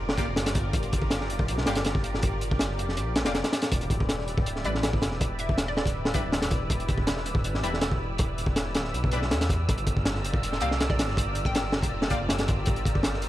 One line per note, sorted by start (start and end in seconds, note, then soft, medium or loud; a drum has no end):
0.00 0.16 F1 medium
0.00 3.68 F4 medium
0.00 9.64 G4 medium
0.00 3.68 A#4 medium
0.00 9.64 D5 medium
0.00 3.73 D6 medium
0.09 snare loud
0.18 0.26 A#3 medium
0.18 0.26 F4 medium
0.18 0.26 G4 medium
0.18 0.26 D5 medium
0.18 kick medium
0.18 closed hi-hat medium
0.28 0.38 F1 medium
0.36 1.31 G1 medium
0.36 snare loud
0.36 closed hi-hat medium
0.46 snare medium
0.46 closed hi-hat medium
0.55 kick medium
0.55 closed hi-hat medium
0.73 kick loud
0.73 closed hi-hat medium
0.83 closed hi-hat soft
0.93 kick medium
0.93 closed hi-hat medium
1.02 kick loud
1.10 snare loud
1.10 closed hi-hat medium
1.21 snare soft
1.30 1.50 F1 medium
1.30 closed hi-hat medium
1.39 kick loud
1.48 1.65 C2 medium
1.48 closed hi-hat medium
1.58 snare soft
1.66 2.80 G1 medium
1.66 1.75 A#3 medium
1.66 1.75 F4 medium
1.66 1.75 G4 medium
1.66 1.75 D5 medium
1.66 snare medium
1.66 closed hi-hat medium
1.75 snare loud
1.75 closed hi-hat medium
1.85 snare loud
1.85 closed hi-hat medium
1.95 kick medium
2.04 closed hi-hat medium
2.14 snare medium
2.22 kick loud
2.22 closed hi-hat medium
2.41 closed hi-hat medium
2.51 kick medium
2.59 snare loud
2.59 closed hi-hat loud
2.79 2.99 F1 medium
2.79 closed hi-hat medium
2.89 snare soft
2.97 3.24 A#1 medium
2.97 closed hi-hat medium
3.16 snare loud
3.16 closed hi-hat medium
3.25 3.43 F1 loud
3.25 3.33 A#3 medium
3.25 3.33 F4 medium
3.25 3.33 G4 medium
3.25 3.33 D5 medium
3.25 snare loud
3.25 closed hi-hat medium
3.35 snare loud
3.35 closed hi-hat medium
3.44 snare medium
3.44 closed hi-hat medium
3.53 snare loud
3.53 closed hi-hat medium
3.62 snare loud
3.62 closed hi-hat medium
3.72 4.30 E1 medium
3.72 9.64 E4 medium
3.72 9.64 B4 medium
3.72 13.29 E6 medium
3.72 kick loud
3.72 closed hi-hat medium
3.81 closed hi-hat soft
3.90 kick medium
3.90 closed hi-hat medium
4.00 kick loud
4.09 snare loud
4.09 closed hi-hat medium
4.19 snare soft
4.28 4.64 D1 medium
4.28 closed hi-hat medium
4.38 kick loud
4.46 closed hi-hat medium
4.56 snare soft
4.64 5.04 A1 medium
4.64 4.73 G3 medium
4.64 4.73 D4 medium
4.64 4.73 E4 medium
4.64 4.73 B4 medium
4.64 4.94 D5 loud
4.64 closed hi-hat medium
4.75 snare soft
4.83 snare loud
4.83 closed hi-hat medium
4.93 kick medium
5.02 5.79 E1 medium
5.02 snare loud
5.02 closed hi-hat medium
5.11 snare soft
5.21 kick loud
5.21 closed hi-hat medium
5.39 5.62 E5 medium
5.39 closed hi-hat medium
5.49 kick medium
5.58 snare loud
5.58 closed hi-hat medium
5.68 5.74 D5 medium
5.77 6.13 D1 medium
5.77 5.83 D5 medium
5.77 snare loud
5.86 kick medium
5.86 closed hi-hat medium
6.05 snare loud
6.14 6.22 G3 medium
6.14 6.22 D4 medium
6.14 6.22 E4 medium
6.14 6.22 B4 medium
6.14 kick medium
6.14 closed hi-hat medium
6.24 6.34 D1 medium
6.32 7.27 E1 medium
6.32 snare loud
6.32 closed hi-hat medium
6.42 snare loud
6.42 closed hi-hat medium
6.51 kick loud
6.51 closed hi-hat medium
6.70 kick loud
6.70 closed hi-hat medium
6.80 closed hi-hat soft
6.88 kick medium
6.88 closed hi-hat medium
6.98 kick medium
7.07 snare loud
7.07 closed hi-hat medium
7.17 snare soft
7.26 7.46 D1 medium
7.26 closed hi-hat medium
7.35 kick loud
7.44 7.61 A1 medium
7.44 closed hi-hat medium
7.54 snare soft
7.63 8.77 E1 medium
7.63 7.71 G3 medium
7.63 7.71 D4 medium
7.63 7.71 E4 medium
7.63 7.71 B4 medium
7.63 closed hi-hat medium
7.74 snare soft
7.81 snare loud
7.81 closed hi-hat medium
7.92 kick medium
8.18 kick loud
8.18 closed hi-hat medium
8.38 closed hi-hat medium
8.46 kick medium
8.56 snare loud
8.56 closed hi-hat medium
8.74 8.93 D1 medium
8.74 snare loud
8.74 closed hi-hat medium
8.84 snare soft
8.94 9.33 B1 medium
8.94 closed hi-hat medium
9.04 kick medium
9.11 9.20 G3 medium
9.11 9.20 D4 medium
9.11 9.20 E4 medium
9.11 9.20 B4 medium
9.11 closed hi-hat medium
9.22 snare soft
9.31 9.67 E2 medium
9.31 snare loud
9.31 closed hi-hat medium
9.41 snare loud
9.41 closed hi-hat medium
9.49 kick loud
9.49 closed hi-hat medium
9.68 10.26 G1 loud
9.68 13.29 F4 medium
9.68 13.29 G4 medium
9.68 13.29 A#4 medium
9.68 13.29 D5 medium
9.68 kick loud
9.68 closed hi-hat medium
9.78 closed hi-hat soft
9.87 kick loud
9.87 closed hi-hat medium
9.97 kick medium
10.05 snare loud
10.05 closed hi-hat medium
10.15 snare soft
10.24 10.60 F1 medium
10.24 closed hi-hat medium
10.34 kick loud
10.43 closed hi-hat medium
10.52 snare soft
10.61 11.00 C2 loud
10.61 10.69 A#3 medium
10.61 10.69 F4 medium
10.61 10.69 G4 medium
10.61 10.69 D5 medium
10.61 10.90 F5 medium
10.61 closed hi-hat medium
10.71 snare soft
10.80 snare loud
10.80 closed hi-hat medium
10.90 11.12 D5 medium
10.90 kick loud
10.99 11.75 G1 medium
10.99 snare loud
10.99 closed hi-hat medium
11.08 snare soft
11.17 kick loud
11.17 closed hi-hat loud
11.35 closed hi-hat medium
11.45 11.73 G5 medium
11.45 kick medium
11.55 snare loud
11.55 closed hi-hat loud
11.72 12.09 F1 medium
11.72 snare loud
11.83 kick medium
11.83 closed hi-hat medium
12.02 snare loud
12.10 12.18 A#3 medium
12.10 12.18 F4 medium
12.10 12.18 G4 medium
12.10 12.18 D5 medium
12.10 kick medium
12.10 closed hi-hat medium
12.20 12.31 F1 medium
12.29 13.24 G1 medium
12.29 snare loud
12.29 closed hi-hat medium
12.38 snare loud
12.38 closed hi-hat medium
12.48 kick loud
12.48 closed hi-hat medium
12.66 kick loud
12.66 closed hi-hat medium
12.76 closed hi-hat soft
12.85 kick medium
12.85 closed hi-hat medium
12.95 kick medium
13.03 snare loud
13.03 closed hi-hat loud
13.13 snare soft
13.22 13.29 F1 medium
13.22 closed hi-hat medium